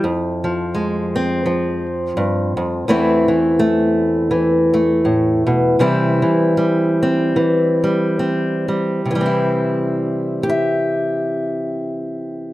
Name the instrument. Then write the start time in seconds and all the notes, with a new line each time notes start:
steel-string acoustic guitar
0.04 F2
0.44 F3
0.75 G#3
1.16 C4
1.46 F3
2.17 G2
2.57 F2
2.88 E2 E3 A3 C4 E4
3.28 E3
3.59 A3
4.31 E3
4.74 A3
5.05 A2
5.47 B2
5.79 C3 E3 G3 C4 E4
6.22 E3
6.57 G3
7.03 C4
7.36 E3
7.84 G3
8.19 C4
8.68 G3
9.05 C3
9.11 E3
9.15 G3
9.21 C4
9.26 E4
10.43 G4
10.49 E5